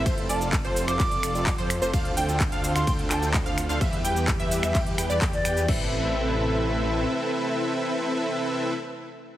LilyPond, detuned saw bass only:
\new Staff \with { instrumentName = "Detuned saw bass" } { \clef bass \time 4/4 \key a \minor \tempo 4 = 128 f,,8 f,,8. f,,8 f,,16 f,,8 f,,8. f,8 f,,16 | d,8 d,8. d,8 d,16 d,8 d,8. d,8 d,16 | e,8 e,8. e,8 e,16 e,8 e,16 e,16 e,8 e,8 | a,,2. r4 |
r1 | }